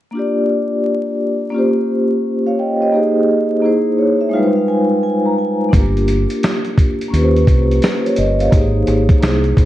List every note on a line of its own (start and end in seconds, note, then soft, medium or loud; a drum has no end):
0.11 1.49 A#3 medium
0.11 1.51 D4 medium
0.15 1.52 F4 medium
0.15 1.53 G4 medium
0.15 1.54 D5 medium
1.50 2.89 A#3 medium
1.50 2.90 C#4 medium
1.54 2.91 F4 medium
1.54 2.92 G4 medium
1.54 2.25 C5 medium
2.47 2.59 C#5 soft
2.47 2.58 F5 medium
2.59 2.81 D#5 soft
2.59 2.81 G5 medium
2.82 2.95 C5 soft
2.82 3.15 D#5 medium
2.92 3.61 A#3 medium
2.92 3.62 D#4 medium
2.92 3.64 G4 medium
2.92 3.64 G#4 medium
2.92 3.65 C5 medium
3.62 4.33 A#3 medium
3.62 4.30 D#4 medium
3.62 4.34 E4 medium
3.62 4.34 G#4 medium
3.62 4.35 C5 medium
3.98 4.19 C#5 medium
4.21 4.32 E5 medium
4.29 5.68 G#3 medium
4.29 5.69 D#4 medium
4.29 4.54 F5 medium
4.34 5.71 G3 medium
4.34 5.70 F4 medium
4.34 4.44 B4 medium
4.44 5.76 C5 medium
4.56 4.67 F5 medium
4.68 5.01 G#5 medium
5.03 5.24 G#5 medium
5.26 5.37 A#5 medium
5.38 5.71 G#5 medium
5.69 7.07 A#3 medium
5.69 7.09 D4 medium
5.73 6.25 G1 loud
5.73 7.10 F4 medium
5.73 7.11 G4 medium
5.73 7.12 A#4 medium
5.73 kick loud
5.73 closed hi-hat medium
5.97 closed hi-hat soft
6.08 closed hi-hat medium
6.30 closed hi-hat soft
6.43 snare loud
6.43 closed hi-hat medium
6.65 closed hi-hat soft
6.78 kick medium
6.78 closed hi-hat medium
7.01 closed hi-hat soft
7.08 8.47 A#3 medium
7.08 8.48 C#4 medium
7.08 8.49 F4 medium
7.13 7.44 D#2 loud
7.13 8.50 G4 medium
7.13 7.23 B4 medium
7.13 closed hi-hat medium
7.23 7.81 C5 medium
7.36 closed hi-hat soft
7.47 7.79 C2 medium
7.47 kick medium
7.47 closed hi-hat medium
7.71 closed hi-hat soft
7.82 8.04 C5 medium
7.82 snare medium
7.82 closed hi-hat medium
8.05 8.17 A#4 medium
8.05 8.17 C#5 medium
8.05 closed hi-hat soft
8.16 8.49 G1 medium
8.16 8.39 C5 medium
8.16 8.39 D#5 medium
8.16 closed hi-hat medium
8.40 8.74 C#5 soft
8.40 8.73 F5 medium
8.40 closed hi-hat soft
8.51 8.84 G#1 loud
8.51 9.19 A#3 medium
8.51 9.20 D#4 medium
8.51 9.22 G4 medium
8.51 9.22 G#4 medium
8.51 9.23 C5 medium
8.51 kick loud
8.51 closed hi-hat medium
8.87 9.08 G#1 medium
8.87 closed hi-hat medium
9.09 kick medium
9.09 closed hi-hat soft
9.21 9.54 C2 medium
9.21 9.65 A#3 medium
9.21 9.65 D#4 medium
9.21 9.65 E4 medium
9.21 9.65 G#4 medium
9.21 9.65 C5 medium
9.21 snare loud
9.21 closed hi-hat medium
9.44 closed hi-hat soft
9.57 9.65 A#1 medium
9.57 kick medium
9.57 closed hi-hat medium